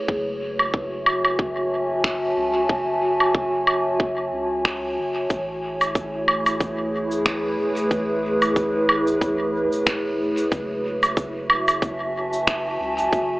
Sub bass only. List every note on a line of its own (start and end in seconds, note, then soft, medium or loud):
0.08 2.34 F#1 loud
2.37 2.66 C#2 medium
2.69 4.32 F#1 loud
4.33 4.99 C#2 medium
4.98 5.27 F#1 medium
5.30 7.56 A1 loud
7.58 7.88 E1 medium
7.91 9.69 A1 loud
9.72 10.34 E1 medium
10.52 12.77 F#1 loud
12.80 13.09 C#2 medium
13.13 13.40 F#1 loud